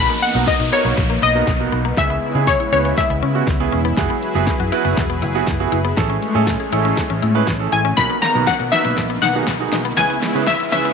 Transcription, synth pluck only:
0.00 0.23 B5 loud
0.22 0.48 F#5 medium
0.48 0.71 D#5 medium
0.73 1.24 C#5 loud
1.23 2.00 D#5 medium
1.98 2.49 E5 loud
2.47 2.71 C#5 medium
2.73 2.98 C#5 medium
2.98 3.69 E5 medium
7.73 7.98 G#5 loud
7.97 8.21 B5 loud
8.22 8.46 A#5 loud
8.47 8.73 F#5 loud
8.72 9.24 E5 loud
9.22 9.99 F#5 loud
9.97 10.49 G#5 loud
10.47 10.71 E5 medium
10.72 10.93 E5 loud

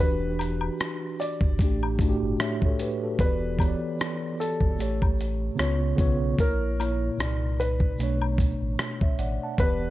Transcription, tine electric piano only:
0.00 1.48 E3 medium
0.00 1.49 D4 medium
0.00 1.50 F#4 medium
0.00 1.51 G4 medium
1.59 1.96 A2 medium
1.59 1.97 A3 medium
1.59 1.98 D4 medium
1.64 1.99 G4 medium
1.98 3.11 A2 medium
1.98 3.12 A3 medium
1.98 3.12 D4 medium
2.03 2.08 F#4 medium
2.09 2.44 G4 medium
2.40 2.62 C#5 medium
2.40 2.61 E5 medium
2.65 2.80 A4 medium
2.65 2.80 C#5 medium
2.81 3.02 G4 medium
2.81 3.02 B4 medium
3.03 3.41 F#4 medium
3.03 3.40 A4 medium
3.18 3.56 E3 medium
3.18 3.57 B3 medium
3.18 3.58 G4 medium
3.24 3.58 D5 medium
3.57 4.77 E3 medium
3.57 4.78 B3 medium
3.57 4.79 G4 medium
3.62 3.67 C#5 medium
3.68 4.83 D5 medium
4.77 5.53 A2 medium
4.77 5.54 A3 medium
4.77 5.54 G4 medium
4.82 5.55 C#5 medium
5.55 5.94 C#3 medium
5.55 5.95 B3 medium
5.55 5.96 F4 medium
5.60 5.97 C#5 loud
5.96 6.35 C#3 medium
5.96 6.35 B3 medium
5.96 6.36 F4 medium
6.01 6.37 C#5 loud
6.37 6.75 A#2 medium
6.37 6.76 A#3 medium
6.37 6.77 E4 medium
6.42 6.78 C#5 medium
6.78 7.18 A#2 medium
6.78 7.19 A#3 medium
6.78 7.20 E4 medium
6.83 7.21 C#5 medium
7.17 7.94 A#2 medium
7.17 7.93 C3 medium
7.17 7.95 D#4 medium
7.22 7.95 D5 medium
7.99 9.11 B2 medium
7.99 9.12 A3 medium
7.99 9.13 D4 medium
8.03 8.81 C#5 medium
9.02 9.18 C#5 medium
9.02 9.18 E5 medium
9.19 9.41 D5 medium
9.19 9.40 F#5 medium
9.43 9.81 F#5 medium
9.43 9.80 A5 medium
9.58 9.90 E3 medium
9.58 9.90 B3 medium
9.58 9.90 G4 medium
9.63 9.90 D5 medium

